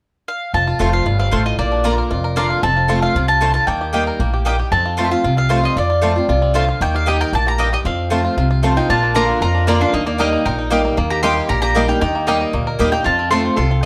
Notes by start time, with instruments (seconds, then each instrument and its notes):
0.28 mandolin F5
0.54 upright bass F1, steel-string acoustic guitar F2, five-string banjo F4, mandolin A5
0.67 five-string banjo F4
0.79 upright bass F1, steel-string acoustic guitar F3 A3 C4 F4, mandolin A3 F4 C5 A5, five-string banjo F4
0.93 five-string banjo F4, mandolin F5
1.06 upright bass G1, steel-string acoustic guitar G2, five-string banjo F4
1.19 five-string banjo C4, mandolin F5
1.31 upright bass A1, steel-string acoustic guitar A2, mandolin A3 F4 C5 A5, five-string banjo F4
1.46 five-string banjo F4, mandolin D#5
1.58 upright bass A#1, steel-string acoustic guitar A#2, five-string banjo A#3, mandolin D5
1.72 five-string banjo D4
1.84 steel-string acoustic guitar D3 A#3 D4 F4, mandolin A#3 F4 D5 A#5, five-string banjo F4
1.98 five-string banjo A#4
2.11 upright bass F1, steel-string acoustic guitar F2, five-string banjo F4
2.24 five-string banjo A#4
2.36 steel-string acoustic guitar D3 A#3 D4 F4, mandolin A#3 F4 D5 F5 A#5, five-string banjo D4
2.50 five-string banjo F4
2.63 upright bass F1, steel-string acoustic guitar F2, five-string banjo C4, mandolin A5
2.76 five-string banjo F4
2.88 steel-string acoustic guitar F3 A3 C4 F4, mandolin A3 F4 C5 A5, five-string banjo F4
3.02 five-string banjo F4, mandolin F5
3.15 upright bass C2, steel-string acoustic guitar C3, five-string banjo F4
3.28 five-string banjo F4, mandolin A5
3.41 steel-string acoustic guitar D3, mandolin A3 F4 C5 A5, five-string banjo F4
3.54 five-string banjo F4, mandolin A5
3.67 upright bass D#2, steel-string acoustic guitar D#3, five-string banjo A#3, mandolin G5
3.81 five-string banjo G4
3.93 steel-string acoustic guitar G3 A#3 D#4 G4, mandolin A#3 G4 D#5 G5, five-string banjo D#4
4.07 five-string banjo A#4
4.19 upright bass A#1, steel-string acoustic guitar A2, five-string banjo A#3
4.33 five-string banjo G4
4.45 steel-string acoustic guitar G2, mandolin A#3 G4 D#5 G5, five-string banjo D#4
4.59 five-string banjo G4
4.72 upright bass F2, steel-string acoustic guitar F2, five-string banjo C4, mandolin A5
4.86 five-string banjo F4
4.97 steel-string acoustic guitar F3 A3 C4 F4, mandolin A3 F4 C5 A5, five-string banjo F4
5.05 mandolin E5
5.11 steel-string acoustic guitar C4 F4, five-string banjo F4, mandolin F5
5.24 upright bass C2, steel-string acoustic guitar C3, five-string banjo F4
5.37 five-string banjo F4, mandolin F5
5.49 steel-string acoustic guitar F3 A3 C4 F4, mandolin A3 F4 C5 A5, five-string banjo F4
5.63 five-string banjo F4, mandolin D#5
5.76 upright bass F2, steel-string acoustic guitar F2, five-string banjo F4, mandolin D5
5.90 five-string banjo F4
6.02 steel-string acoustic guitar F3 A3 C4 F4, mandolin A3 F4 C5 A5, five-string banjo F4
6.15 steel-string acoustic guitar C4 F4, five-string banjo F4
6.29 upright bass C2, steel-string acoustic guitar C3, five-string banjo F4
6.42 five-string banjo C4
6.54 steel-string acoustic guitar D3, mandolin A3 F4 C5 F5 A5, five-string banjo F4
6.69 five-string banjo F4
6.81 upright bass D#2, steel-string acoustic guitar D#3, five-string banjo A#3, mandolin G5
6.95 five-string banjo G4, mandolin F5
7.06 steel-string acoustic guitar G3 A#3 D#4 G4, mandolin A#3 G4 D#5 G5, five-string banjo D#4
7.21 five-string banjo A#4, mandolin G5
7.33 upright bass A#1, steel-string acoustic guitar A2, five-string banjo A#3, mandolin A5
7.47 five-string banjo G4, mandolin A#5
7.58 steel-string acoustic guitar G2, mandolin A#3 G4 D#5 G5, five-string banjo D#4
7.73 five-string banjo G4, mandolin D#5
7.85 upright bass F2, steel-string acoustic guitar F2, five-string banjo C4, mandolin F5
8.10 steel-string acoustic guitar F3 A3 C4 F4, mandolin A3 F4 C5 A5, five-string banjo F4
8.25 five-string banjo F4
8.37 upright bass C2, steel-string acoustic guitar C3, five-string banjo F4
8.51 five-string banjo F4
8.63 steel-string acoustic guitar F3 A3 C4 F4, mandolin A3 F4 C5 A5, five-string banjo F4
8.76 steel-string acoustic guitar C4 F4, resonator guitar played with a steel bar D#4, five-string banjo F4, mandolin G5
8.89 upright bass A#1, steel-string acoustic guitar A#2, five-string banjo D4, resonator guitar played with a steel bar F4, mandolin A5
9.03 five-string banjo A#3
9.15 steel-string acoustic guitar D3 A#3 D4 F4, mandolin A#3 F4 D5 A#5, resonator guitar played with a steel bar F4, five-string banjo A#4
9.29 five-string banjo D4
9.41 upright bass F2, steel-string acoustic guitar F2, resonator guitar played with a steel bar F4, five-string banjo A#4, mandolin A#5
9.55 five-string banjo D4
9.67 steel-string acoustic guitar D3 A#3 D4 F4, mandolin A#3 F4 D5 A#5, resonator guitar played with a steel bar A#3, five-string banjo F4
9.81 five-string banjo A#3, resonator guitar played with a steel bar D4, mandolin F5
9.93 upright bass D#2, steel-string acoustic guitar D#3, resonator guitar played with a steel bar A#3, five-string banjo D#4, mandolin D#5
10.06 five-string banjo A#3, resonator guitar played with a steel bar A#3, mandolin D5
10.18 steel-string acoustic guitar G3 A#3 D#4 G4, mandolin A#3 G4 D#5 G5, resonator guitar played with a steel bar A#3, five-string banjo A#4
10.33 five-string banjo D#4
10.45 upright bass A#1, steel-string acoustic guitar A#2, resonator guitar played with a steel bar D#4, five-string banjo A#4, mandolin G5
10.59 five-string banjo D#4
10.70 steel-string acoustic guitar G3 A#3 D#4 G4, mandolin A#3 G4 D#5 G5, five-string banjo G4
10.85 five-string banjo A#3
10.97 upright bass D#2, steel-string acoustic guitar D#3, five-string banjo A#3
11.10 resonator guitar played with a steel bar G4, mandolin A#5
11.23 steel-string acoustic guitar G3 A#3 D#4 G4, mandolin A#3 G4 D#5 G5 C6, five-string banjo A#3, resonator guitar played with a steel bar G4
11.37 five-string banjo G4
11.49 upright bass A#1, steel-string acoustic guitar A#2, resonator guitar played with a steel bar G4, five-string banjo A#4, mandolin A#5
11.62 five-string banjo A#3, resonator guitar played with a steel bar G4, mandolin A#5
11.75 steel-string acoustic guitar G3 A#3 D#4 G4, mandolin A#3 G4 D#5 G5, five-string banjo A#4
11.88 resonator guitar played with a steel bar D#4, five-string banjo G4, mandolin G5
12.01 upright bass D#2, steel-string acoustic guitar D#3, resonator guitar played with a steel bar D#4, five-string banjo G4, mandolin G5
12.15 five-string banjo A#3
12.27 steel-string acoustic guitar G3 A#3 D#4 G4, mandolin A#3 G4 D#5 G5, resonator guitar played with a steel bar A#3, five-string banjo A#4
12.41 five-string banjo G4
12.53 upright bass D2, steel-string acoustic guitar A#2, five-string banjo A#3
12.67 five-string banjo A#4
12.79 upright bass D#2, steel-string acoustic guitar G3 A#3 D#4 G4, mandolin A#3 G4 D#5 G5, five-string banjo G4
12.92 five-string banjo A#3, resonator guitar played with a steel bar D#4, steel-string acoustic guitar D#4 G4, mandolin G5
13.04 steel-string acoustic guitar F2, upright bass F2, resonator guitar played with a steel bar F4, five-string banjo F4, mandolin A5
13.19 five-string banjo C4
13.30 steel-string acoustic guitar F3 A3 C4 F4, mandolin A3 F4 C5 A5 C6, five-string banjo F4, resonator guitar played with a steel bar A4
13.45 five-string banjo F4
13.56 upright bass C2, steel-string acoustic guitar C3, five-string banjo F4, resonator guitar played with a steel bar A4, mandolin C6
13.71 five-string banjo F4